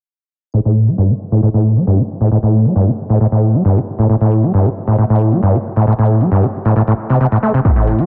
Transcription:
0.54 acid bass A2, closed hi-hat
0.65 acid bass A2, closed hi-hat
0.87 acid bass G3, closed hi-hat
0.98 acid bass G2, closed hi-hat
1.10 acid bass E3, closed hi-hat
1.32 acid bass A2, closed hi-hat
1.43 acid bass A2, closed hi-hat
1.54 acid bass A2, closed hi-hat
1.76 acid bass G3, closed hi-hat
1.87 acid bass G2, closed hi-hat
1.99 acid bass E3, closed hi-hat
2.21 acid bass A2, closed hi-hat
2.32 acid bass A2, closed hi-hat
2.43 acid bass A2, closed hi-hat
2.65 acid bass G3, closed hi-hat
2.76 acid bass G2, closed hi-hat
2.87 acid bass E3, closed hi-hat
3.10 acid bass A2, closed hi-hat
3.21 acid bass A2, closed hi-hat
3.32 acid bass A2, closed hi-hat
3.54 acid bass G3, closed hi-hat
3.65 acid bass G2, closed hi-hat
3.76 acid bass E3, closed hi-hat
3.99 acid bass A2, closed hi-hat
4.09 acid bass A2, closed hi-hat
4.21 acid bass A2, closed hi-hat
4.43 acid bass G3, closed hi-hat
4.54 acid bass G2, closed hi-hat
4.65 acid bass E3, closed hi-hat
4.87 acid bass A2, closed hi-hat
4.98 acid bass A2, closed hi-hat
5.10 acid bass A2, closed hi-hat
5.32 acid bass G3, closed hi-hat
5.43 acid bass G2, closed hi-hat
5.54 acid bass E3, closed hi-hat
5.76 acid bass A2, closed hi-hat
5.87 acid bass A2, closed hi-hat
5.99 acid bass A2, closed hi-hat
6.21 acid bass G3, closed hi-hat
6.32 acid bass G2, closed hi-hat
6.43 acid bass E3, closed hi-hat
6.65 acid bass A2, closed hi-hat
6.76 acid bass A2, closed hi-hat
6.88 acid bass A2, closed hi-hat
7.10 acid bass C3, closed hi-hat
7.21 acid bass C3, closed hi-hat
7.32 acid bass A2, closed hi-hat
7.43 acid bass A3
7.54 acid bass C3, closed hi-hat
7.65 acid bass A2, kick, closed hi-hat
7.76 acid bass A2, closed hi-hat
7.87 open hi-hat
7.98 acid bass G3, closed hi-hat

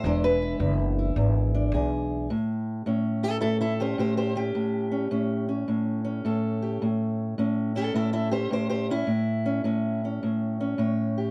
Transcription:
Already playing: steel-string acoustic guitar C5
0.04 upright bass E1, steel-string acoustic guitar E2 G#3 D4 E4
0.24 steel-string acoustic guitar B4
0.42 steel-string acoustic guitar E4
0.59 upright bass F#1, steel-string acoustic guitar E2
0.99 steel-string acoustic guitar E4
1.16 upright bass G#1, steel-string acoustic guitar E2
1.54 steel-string acoustic guitar D4
1.72 upright bass B1, steel-string acoustic guitar E2 G#4
2.30 steel-string acoustic guitar A2
2.86 steel-string acoustic guitar A2 C#4
3.23 steel-string acoustic guitar E4 A4
3.41 steel-string acoustic guitar A2 E4 A4
3.61 steel-string acoustic guitar E4 A4
3.80 steel-string acoustic guitar C#4 G4 C5
3.98 steel-string acoustic guitar A2 G4 C5
4.17 steel-string acoustic guitar G4 C5
4.35 steel-string acoustic guitar C#4 G4
4.55 steel-string acoustic guitar A2
4.92 steel-string acoustic guitar C#4
5.11 steel-string acoustic guitar A2 C#4
5.49 steel-string acoustic guitar C#4
5.68 steel-string acoustic guitar A2
6.05 steel-string acoustic guitar C#4
6.25 steel-string acoustic guitar A2 A4
6.62 steel-string acoustic guitar G4
6.82 steel-string acoustic guitar A2
7.38 steel-string acoustic guitar A2 C#4
7.75 steel-string acoustic guitar C#4 E4 A4
7.94 steel-string acoustic guitar A2 E4 A4
8.13 steel-string acoustic guitar E4 A4
8.31 steel-string acoustic guitar C#4 G4 C5
8.51 steel-string acoustic guitar A2 G4 C5
8.69 steel-string acoustic guitar G4 C5
8.90 steel-string acoustic guitar C#4 E4
9.07 steel-string acoustic guitar A2
9.46 steel-string acoustic guitar C#4
9.64 steel-string acoustic guitar A2 C#4
10.05 steel-string acoustic guitar C#4
10.23 steel-string acoustic guitar A2
10.61 steel-string acoustic guitar C#4
10.78 steel-string acoustic guitar A2 C#5
11.18 steel-string acoustic guitar G4

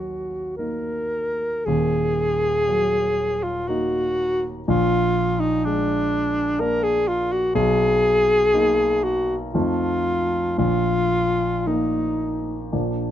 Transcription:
Already playing: grand piano D#2 F#3, alto saxophone F#4
0.57 grand piano A#3 D#4, alto saxophone A#4
1.66 grand piano D#1 D#2, alto saxophone G#4
2.69 grand piano F#3
3.43 alto saxophone F4
3.68 grand piano A#3 D#4, alto saxophone F#4
4.68 grand piano A#1, alto saxophone F4
5.40 alto saxophone D#4
5.65 grand piano G#3, alto saxophone D4
6.59 grand piano A#3 D4, alto saxophone A#4
6.83 alto saxophone G#4
7.08 alto saxophone F4
7.32 alto saxophone F#4
7.55 grand piano B1, alto saxophone G#4
8.54 grand piano A#3 D#4
9.04 alto saxophone F#4
9.54 grand piano F2 F3 A3 D#4, alto saxophone F4
10.58 grand piano A#1, alto saxophone F4
11.67 grand piano A#3 D#4, alto saxophone D#4
12.72 grand piano A#1 F3 A#3 D4

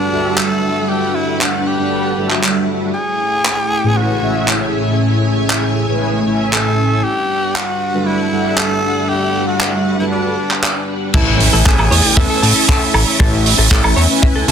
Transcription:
Already playing: string machine G3 D4 B4 F#5, tenor saxophone D4
0.11 analog polysynth G3 D4 F#4 A4 E5
0.38 tenor saxophone A4, clap
0.89 tenor saxophone G4
1.15 tenor saxophone E4
1.41 tenor saxophone F#4, clap
1.67 tenor saxophone G4
1.79 analog polysynth G3 D4 A4 B4 F#5
2.16 analog polysynth G3 D4 F#4 A4 E5
2.31 clap
2.44 clap
2.94 string machine A3 E4 C#5 G#5, tenor saxophone G#4
3.45 clap
3.84 analog polysynth A2 C#4 E4 G#4 B4
3.97 tenor saxophone F#4
4.21 analog polysynth A2 C#4 E4 G#4 E5
4.48 clap
5.50 clap
5.88 analog polysynth A2 C#4 E4 G#4 B4
6.26 analog polysynth A2 C#4 E4 E5 G#5
6.53 tenor saxophone A4, clap
7.04 string machine G3 D4 B4 F#5, tenor saxophone G4
7.55 tenor saxophone F#4, clap
7.93 analog polysynth G3 D4 F#4 A4 B4
8.07 tenor saxophone E4
8.31 analog polysynth G3 D4 A4 E5 F#5
8.57 tenor saxophone A4, clap
9.09 tenor saxophone G4
9.48 tenor saxophone F#4
9.61 clap
9.99 analog polysynth G3 D4 F#4 A4 B4, tenor saxophone E4
10.12 tenor saxophone D4
10.51 clap
10.64 clap
11.14 analog synth bass A1, string machine A3 E5 C#6, analog polysynth C#4 E4 B4 G#5, tenor saxophone E4, clean electric guitar A4, kick, crash, impact
11.40 open hi-hat
11.53 analog synth bass A1, clean electric guitar A4
11.66 analog synth bass A1, tenor saxophone G#4, clean electric guitar A4, kick, clap
11.79 analog synth bass A1, clean electric guitar A4, high woodblock
11.91 analog synth bass E2, clean electric guitar C#5, open hi-hat
12.04 analog polysynth C#4 E4 B4 G#5
12.17 analog synth bass E2, tenor saxophone A4, clean electric guitar E5, kick
12.30 clean electric guitar A4
12.42 analog synth bass A2, analog polysynth C#4 E4 E5, clean electric guitar A5, open hi-hat
12.56 clean electric guitar A4
12.68 tenor saxophone A4, clean electric guitar A5, kick, clap
12.94 analog synth bass A1, clean electric guitar A4, open hi-hat, high woodblock
13.20 analog synth bass A1, clean electric guitar A4, kick
13.46 open hi-hat
13.58 analog synth bass A1, clean electric guitar A4
13.71 analog synth bass A1, clean electric guitar A4, kick, clap
13.84 analog synth bass A1, clean electric guitar A4, high woodblock
13.96 analog synth bass E2, clean electric guitar C#5, open hi-hat
14.09 analog polysynth C#4 E4 B4 G#5
14.22 clean electric guitar E5, kick
14.35 analog synth bass C#2, clean electric guitar A4
14.47 analog synth bass C#2, analog polysynth C#4 E4, clean electric guitar A5, open hi-hat

